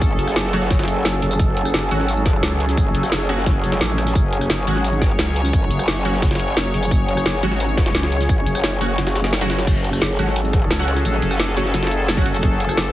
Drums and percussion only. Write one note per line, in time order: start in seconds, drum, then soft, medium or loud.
0.02 kick loud
0.02 closed hi-hat loud
0.02 closed hi-hat medium
0.02 tambourine soft
0.19 closed hi-hat medium
0.19 tambourine soft
0.27 cross-stick soft
0.27 tambourine medium
0.36 snare loud
0.36 closed hi-hat medium
0.36 tambourine soft
0.45 snare soft
0.53 closed hi-hat medium
0.62 snare soft
0.71 kick loud
0.71 snare loud
0.71 closed hi-hat medium
0.71 tambourine soft
0.79 snare medium
0.79 closed hi-hat medium
0.84 snare medium
0.84 closed hi-hat medium
0.88 closed hi-hat medium
0.88 tambourine soft
1.05 snare loud
1.05 closed hi-hat loud
1.05 closed hi-hat medium
1.05 tambourine soft
1.22 closed hi-hat medium
1.22 open hi-hat medium
1.31 tambourine medium
1.40 kick loud
1.40 closed hi-hat medium
1.40 tambourine soft
1.57 closed hi-hat medium
1.57 tambourine soft
1.65 cross-stick soft
1.65 tambourine medium
1.74 snare loud
1.74 closed hi-hat medium
1.74 tambourine soft
1.91 closed hi-hat medium
2.00 snare soft
2.08 closed hi-hat medium
2.08 tambourine soft
2.17 closed hi-hat soft
2.26 kick loud
2.26 snare soft
2.26 closed hi-hat medium
2.26 tambourine soft
2.43 snare loud
2.43 closed hi-hat medium
2.43 tambourine soft
2.60 closed hi-hat medium
2.60 open hi-hat medium
2.69 snare medium
2.69 tambourine medium
2.77 kick loud
2.77 closed hi-hat medium
2.77 tambourine soft
2.95 closed hi-hat medium
2.95 tambourine soft
3.03 cross-stick soft
3.03 tambourine medium
3.12 snare loud
3.12 closed hi-hat medium
3.12 tambourine soft
3.21 snare soft
3.29 closed hi-hat medium
3.38 snare soft
3.46 kick loud
3.46 snare loud
3.46 closed hi-hat medium
3.46 tambourine soft
3.64 closed hi-hat medium
3.64 tambourine soft
3.72 snare loud
3.72 closed hi-hat medium
3.81 snare loud
3.81 closed hi-hat medium
3.81 tambourine soft
3.90 closed hi-hat medium
3.98 cross-stick soft
3.98 closed hi-hat medium
3.98 open hi-hat medium
4.07 snare soft
4.07 tambourine medium
4.15 kick loud
4.15 closed hi-hat medium
4.15 tambourine soft
4.33 closed hi-hat medium
4.33 tambourine soft
4.41 cross-stick soft
4.41 tambourine medium
4.50 snare loud
4.50 closed hi-hat medium
4.50 tambourine soft
4.67 closed hi-hat medium
4.76 snare soft
4.84 closed hi-hat medium
4.84 tambourine soft
4.93 closed hi-hat soft
5.02 kick loud
5.02 snare soft
5.02 closed hi-hat medium
5.02 tambourine soft
5.19 snare loud
5.19 closed hi-hat medium
5.19 tambourine medium
5.36 closed hi-hat medium
5.36 open hi-hat medium
5.45 snare medium
5.45 tambourine medium
5.53 kick loud
5.53 closed hi-hat medium
5.53 closed hi-hat loud
5.53 tambourine medium
5.71 closed hi-hat medium
5.71 tambourine soft
5.79 cross-stick soft
5.79 tambourine medium
5.88 snare loud
5.88 closed hi-hat medium
5.88 tambourine medium
5.96 snare soft
6.05 closed hi-hat medium
6.14 snare soft
6.22 kick loud
6.22 snare loud
6.22 closed hi-hat medium
6.22 tambourine medium
6.31 snare medium
6.31 closed hi-hat medium
6.35 snare medium
6.35 closed hi-hat medium
6.40 closed hi-hat medium
6.40 tambourine soft
6.57 snare loud
6.57 closed hi-hat medium
6.57 tambourine medium
6.74 closed hi-hat medium
6.74 open hi-hat medium
6.83 tambourine medium
6.91 kick loud
6.91 closed hi-hat loud
6.91 closed hi-hat medium
6.91 tambourine medium
7.08 closed hi-hat medium
7.08 tambourine soft
7.17 cross-stick soft
7.17 tambourine medium
7.26 snare loud
7.26 closed hi-hat medium
7.26 tambourine medium
7.43 closed hi-hat medium
7.52 snare soft
7.60 closed hi-hat medium
7.60 closed hi-hat loud
7.60 tambourine medium
7.69 closed hi-hat soft
7.77 kick loud
7.77 snare loud
7.77 snare soft
7.77 closed hi-hat medium
7.77 tambourine soft
7.86 snare loud
7.86 closed hi-hat medium
7.95 snare loud
7.95 closed hi-hat medium
7.95 closed hi-hat loud
7.95 tambourine medium
8.03 snare loud
8.03 closed hi-hat medium
8.12 closed hi-hat medium
8.12 open hi-hat medium
8.21 snare medium
8.21 tambourine medium
8.29 kick loud
8.29 closed hi-hat medium
8.29 closed hi-hat loud
8.29 tambourine medium
8.46 closed hi-hat medium
8.46 tambourine soft
8.55 cross-stick soft
8.55 closed hi-hat soft
8.55 tambourine medium
8.64 snare loud
8.64 closed hi-hat medium
8.64 closed hi-hat loud
8.64 tambourine soft
8.72 snare soft
8.81 closed hi-hat medium
8.98 snare loud
8.98 closed hi-hat medium
8.98 closed hi-hat loud
8.98 tambourine soft
9.07 cross-stick soft
9.07 snare loud
9.07 closed hi-hat medium
9.15 snare loud
9.15 closed hi-hat medium
9.15 tambourine soft
9.24 snare loud
9.24 snare soft
9.24 closed hi-hat medium
9.24 closed hi-hat soft
9.33 snare loud
9.33 closed hi-hat medium
9.33 closed hi-hat loud
9.33 tambourine medium
9.41 snare loud
9.41 closed hi-hat medium
9.41 closed hi-hat soft
9.50 snare loud
9.50 closed hi-hat medium
9.50 open hi-hat medium
9.50 tambourine soft
9.59 snare loud
9.59 closed hi-hat soft
9.59 closed hi-hat medium
9.59 tambourine medium
9.67 kick loud
9.67 closed hi-hat medium
9.67 closed hi-hat loud
9.67 crash loud
9.67 tambourine medium
9.84 closed hi-hat medium
9.84 tambourine soft
9.93 cross-stick soft
9.93 tambourine medium
10.02 snare loud
10.02 closed hi-hat medium
10.02 closed hi-hat loud
10.02 tambourine soft
10.19 closed hi-hat medium
10.19 open hi-hat medium
10.27 snare soft
10.36 closed hi-hat medium
10.36 tambourine soft
10.45 closed hi-hat soft
10.53 kick loud
10.53 closed hi-hat medium
10.53 tambourine soft
10.71 snare loud
10.71 closed hi-hat loud
10.71 closed hi-hat medium
10.71 tambourine soft
10.88 closed hi-hat medium
10.88 open hi-hat medium
10.96 snare medium
10.96 tambourine medium
11.05 closed hi-hat medium
11.05 tambourine soft
11.22 closed hi-hat medium
11.22 tambourine soft
11.31 cross-stick soft
11.31 tambourine medium
11.40 snare loud
11.40 closed hi-hat medium
11.40 tambourine soft
11.48 snare soft
11.57 closed hi-hat medium
11.57 open hi-hat medium
11.65 snare soft
11.74 snare loud
11.74 closed hi-hat medium
11.74 tambourine soft
11.83 snare medium
11.83 closed hi-hat medium
11.87 snare medium
11.87 closed hi-hat medium
11.91 closed hi-hat medium
11.91 tambourine soft
12.08 snare loud
12.08 closed hi-hat loud
12.08 closed hi-hat medium
12.08 tambourine soft
12.17 kick loud
12.26 closed hi-hat medium
12.26 open hi-hat medium
12.34 tambourine medium
12.43 kick loud
12.43 closed hi-hat medium
12.43 tambourine soft
12.60 closed hi-hat medium
12.60 tambourine soft
12.69 cross-stick soft
12.69 tambourine medium
12.77 snare loud
12.77 closed hi-hat medium
12.77 tambourine soft